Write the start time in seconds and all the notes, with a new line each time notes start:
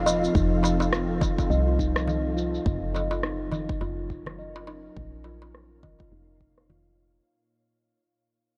Already playing: F1 F3 C4 A4 F5
0.06 D#5, darbuka ka, darbuka tek, shaker
0.23 F4, shaker
0.35 F1 D#4, kick, shaker
0.63 darbuka ka, darbuka tek, shaker
0.80 darbuka tek, shaker
0.93 F4, cross-stick, shaker
1.21 kick, darbuka ka, darbuka dum, shaker
1.38 kick, darbuka tek, shaker
1.50 C2 D#5, shaker
1.67 F4
1.79 D#4, kick, shaker
1.96 cross-stick, darbuka ka, shaker
2.08 darbuka dum, shaker
2.37 F4, shaker
2.55 shaker
2.66 F#1 F#3, kick, shaker
2.95 C#4 D#5, darbuka ka, darbuka tek, shaker
3.11 F4, darbuka tek, shaker
3.23 D#4, cross-stick, shaker
3.38 A#4
3.52 darbuka ka, darbuka dum, shaker
3.69 kick, shaker
3.81 F#1 F4, darbuka ka, shaker
4.10 kick, shaker
4.26 cross-stick, darbuka dum, shaker
4.39 D#5, shaker
4.56 F4, darbuka tek
4.67 D#4, darbuka ka, darbuka tek, shaker
4.86 shaker
4.96 A#1 A#2, kick
5.24 F4, darbuka ka, darbuka tek, shaker
5.42 F5, darbuka tek
5.48 A#3
5.55 cross-stick, shaker
5.83 D#5, kick, darbuka ka, darbuka dum
5.99 F4, kick, darbuka tek
6.12 F1 D#4
6.41 kick
6.58 cross-stick, darbuka ka
6.70 F1 F4, darbuka dum